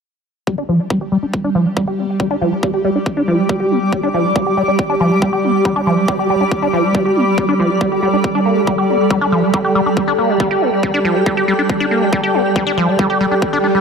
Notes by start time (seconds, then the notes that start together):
0.47 G3 G4, kick
0.58 D4
0.69 F3
0.80 G3 D5
0.84 G4
0.90 G3, kick
1.01 G4
1.12 G3
1.23 D4
1.34 kick
1.44 D4
1.55 F3 D6
1.66 G3
1.77 G3, kick
1.87 G4
1.98 A#3
2.20 G3, kick
2.31 D4
2.41 F3
2.52 G3
2.63 G3, kick
2.74 G4
2.85 G3
2.95 D4
3.06 kick
3.17 D4
3.28 F3
3.39 G3
3.49 G3, kick
3.60 G4
3.71 A#3
3.93 G3, kick
4.03 D4
4.14 F3
4.25 G3
4.36 G3, kick
4.46 G4
4.57 G3
4.68 D4
4.79 kick
4.90 D4
5.00 F3
5.11 G3
5.22 G3, kick
5.33 G4
5.44 A#3
5.65 G3, kick
5.76 D4
5.87 F3
5.98 G3
6.08 G3, kick
6.19 G4
6.30 G3
6.41 D4
6.51 kick
6.62 D4
6.73 F3
6.84 G3
6.95 G3, kick
7.05 G4
7.16 A#3
7.38 G3 A4, kick
7.49 D4
7.59 F3
7.70 G3
7.81 G3, kick
7.92 G4
8.03 G3
8.13 D4
8.24 kick
8.35 D4
8.46 A#3 G5
8.57 G3
8.67 G3, kick
8.78 G4
8.89 A#3
9.11 G3, kick
9.21 D4
9.32 F3
9.43 G3
9.54 G3, kick
9.64 G4
9.75 G3
9.86 D4
9.97 kick
10.08 D4
10.18 A#3
10.29 G3
10.40 G3, kick
10.51 G4
10.62 A#3
10.83 G3, kick
10.94 D4
11.05 F3
11.16 G3
11.26 G3, kick
11.37 G4
11.48 G3
11.59 D4
11.69 kick
11.80 D4
11.91 A#3
12.02 G3
12.13 G3, kick
12.23 G4
12.34 A#3
12.56 G3, kick
12.67 D4
12.77 F3
12.88 G3
12.99 G3, kick
13.10 G4
13.21 G3
13.31 D4
13.42 kick, swell
13.53 D4
13.64 D4
13.75 G3